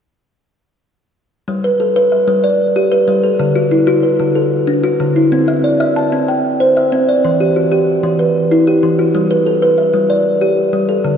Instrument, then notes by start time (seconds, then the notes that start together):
kalimba
1.48 G3
1.64 B4
1.80 A4
1.96 B4
2.12 E5
2.28 G3
2.44 D5
2.76 G4
2.92 B4
3.08 G3
3.24 A4
3.39 D3
3.56 F#4
3.71 E4
3.87 F#4
4.03 B4
4.20 D3
4.35 A4
4.67 D4
4.84 F#4
5.00 D3
5.16 E4
5.32 C4
5.48 E5
5.64 D5
5.80 E5
5.96 A5
6.12 C4
6.28 G5
6.60 C5
6.77 E5
6.92 C4
7.09 D5
7.25 E3
7.40 G4
7.56 F#4
7.72 G4
8.03 E3
8.19 B4
8.51 E4
8.67 G4
8.83 E3
8.99 F#4
9.15 G3
9.31 B4
9.47 A4
9.62 B4
9.78 E5
9.94 G3
10.10 D5
10.41 G4
10.73 G3
10.89 A4
11.04 D3